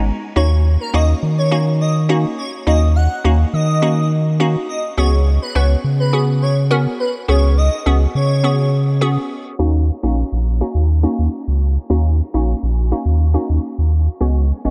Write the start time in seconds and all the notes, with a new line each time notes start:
Already playing: G#1 G#3 B3 C#4 D#4
0.36 D#2 A#3 C#4 D#4 F#4 C#5
0.80 A#4
0.94 D#2 A#3 C#4 D#4 F#4 D#5
1.23 D#3
1.38 C#5
1.51 A#3 C#4 D#4 F#4
1.80 D#5
2.09 A#3 C#4 D#4 F#4
2.38 C#5
2.67 D#2 A#3 C#4 D#4 F#4 D#5
2.96 F#5
3.24 D#2 A#3 C#4 D#4 F#4
3.53 D#3 D#5
3.82 A#3 C#4 D#4 F#4
4.40 A#3 C#4 D#4 F#4
4.69 D#5
4.97 C#2 B3 C#4 F#4 G#4 C#5
5.42 B4
5.55 C#2 B3 C#4 F#4 B4 C#5
5.84 C#3
6.00 B4
6.13 B3 C#4 F#4 G#4
6.42 C#5
6.71 B3 C#4 F#4 A#4
7.00 B4
7.28 C#2 B3 C#4 F#4 G#4 C#5
7.57 D#5
7.86 C#2 B3 C#4 F#4 G#4
8.15 C#3 C#5
8.44 B3 C#4 F#4 G#4
9.01 B3 C#4 F#4 G#4
9.59 D#2 A#3 C#4 D#4 F#4
10.03 A#1 A#3 C#4 D#4 F#4
10.32 A#1
10.61 A#3 C#4 D#4 F#4
10.75 D#2
11.03 A#3 C#4 D#4 F#4
11.19 D#2
11.48 C#2
11.90 D#2 A#3 C#4 D#4 F#4
12.34 A#1 A#3 C#4 D#4 F#4
12.63 A#1
12.92 A#3 C#4 D#4 F#4
13.05 D#2
13.34 A#3 C#4 D#4 F#4
13.50 D#2
13.78 D#2
14.21 C#2 G#3 B3 C#4 F#4
14.65 G#1 G#3 B3 C#4 F#4